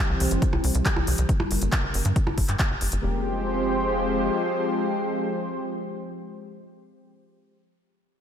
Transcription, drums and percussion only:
0.20 open hi-hat loud
0.31 closed hi-hat medium
0.42 kick loud
0.42 closed hi-hat medium
0.53 percussion blips medium
0.64 open hi-hat loud
0.75 closed hi-hat medium
0.86 kick loud
0.86 clap loud
0.86 closed hi-hat medium
0.96 percussion blips medium
1.07 open hi-hat loud
1.18 closed hi-hat medium
1.29 kick loud
1.29 closed hi-hat medium
1.40 percussion blips medium
1.51 open hi-hat loud
1.62 closed hi-hat medium
1.72 kick loud
1.72 clap loud
1.72 closed hi-hat medium
1.94 open hi-hat loud
2.05 closed hi-hat medium
2.16 kick loud
2.16 closed hi-hat medium
2.27 percussion blips medium
2.38 kick medium
2.38 open hi-hat loud
2.49 clap soft
2.49 closed hi-hat medium
2.59 kick loud
2.59 clap loud
2.59 closed hi-hat medium
2.81 open hi-hat loud
2.92 closed hi-hat medium

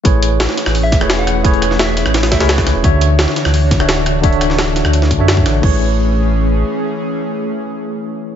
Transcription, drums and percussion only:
0.05 kick loud
0.05 closed hi-hat medium
0.23 closed hi-hat medium
0.40 snare loud
0.40 closed hi-hat medium
0.49 snare medium
0.57 snare medium
0.57 closed hi-hat loud
0.57 closed hi-hat medium
0.66 cross-stick soft
0.66 snare medium
0.75 closed hi-hat medium
0.75 open hi-hat medium
0.92 kick loud
0.92 snare medium
0.92 closed hi-hat medium
0.92 closed hi-hat loud
1.01 cross-stick medium
1.10 snare loud
1.10 closed hi-hat medium
1.27 cross-stick soft
1.27 closed hi-hat medium
1.45 kick loud
1.45 closed hi-hat medium
1.54 closed hi-hat soft
1.62 cross-stick soft
1.62 closed hi-hat medium
1.71 snare soft
1.79 snare loud
1.79 closed hi-hat medium
1.97 snare soft
1.97 closed hi-hat medium
2.06 cross-stick soft
2.14 snare loud
2.14 closed hi-hat medium
2.23 snare loud
2.23 closed hi-hat medium
2.32 kick medium
2.32 snare loud
2.32 closed hi-hat medium
2.32 closed hi-hat loud
2.40 snare loud
2.40 closed hi-hat medium
2.49 snare loud
2.49 closed hi-hat medium
2.58 kick loud
2.58 snare loud
2.58 closed hi-hat medium
2.67 cross-stick soft
2.67 snare medium
2.67 closed hi-hat loud
2.67 closed hi-hat medium
2.84 kick loud
2.84 closed hi-hat medium
3.01 closed hi-hat medium
3.19 snare loud
3.19 closed hi-hat medium
3.28 snare medium
3.36 snare medium
3.36 closed hi-hat medium
3.45 cross-stick medium
3.45 snare medium
3.54 closed hi-hat medium
3.54 open hi-hat medium
3.71 kick loud
3.71 snare medium
3.71 closed hi-hat medium
3.80 cross-stick medium
3.89 snare loud
3.89 closed hi-hat medium
4.06 cross-stick soft
4.06 closed hi-hat medium
4.24 kick loud
4.24 closed hi-hat medium
4.33 closed hi-hat soft
4.41 cross-stick soft
4.41 closed hi-hat medium
4.50 snare soft
4.58 snare loud
4.58 closed hi-hat medium
4.76 snare soft
4.76 closed hi-hat medium
4.85 cross-stick soft
4.93 closed hi-hat medium
5.02 snare medium
5.11 kick medium
5.11 closed hi-hat medium
5.28 snare loud
5.28 closed hi-hat medium
5.37 kick loud
5.46 cross-stick soft
5.46 snare soft
5.46 closed hi-hat medium
5.63 kick loud
5.63 crash medium

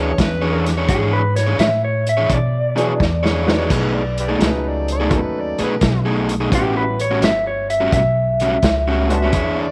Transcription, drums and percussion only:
0.18 kick medium
0.18 snare medium
0.18 closed hi-hat medium
0.66 snare soft
0.66 closed hi-hat medium
0.88 kick medium
0.88 closed hi-hat medium
1.36 snare soft
1.36 closed hi-hat medium
1.59 snare loud
1.59 closed hi-hat medium
2.07 closed hi-hat medium
2.30 kick medium
2.30 closed hi-hat medium
2.77 closed hi-hat medium
3.00 kick medium
3.00 snare medium
3.25 snare medium
3.48 snare medium
3.70 kick loud
3.70 closed hi-hat medium
3.70 crash medium
4.18 closed hi-hat medium
4.41 snare medium
4.41 closed hi-hat medium
4.88 closed hi-hat medium
5.11 kick loud
5.11 closed hi-hat medium
5.58 closed hi-hat medium
5.81 kick medium
5.81 snare loud
5.81 closed hi-hat medium
6.29 closed hi-hat medium
6.52 kick medium
6.52 closed hi-hat medium
7.00 closed hi-hat medium
7.22 snare loud
7.22 closed hi-hat medium
7.70 closed hi-hat medium
7.92 kick loud
7.92 snare soft
7.92 closed hi-hat medium
8.40 closed hi-hat medium
8.62 kick medium
8.62 snare loud
8.62 closed hi-hat medium
9.10 closed hi-hat medium
9.33 kick medium
9.33 closed hi-hat medium

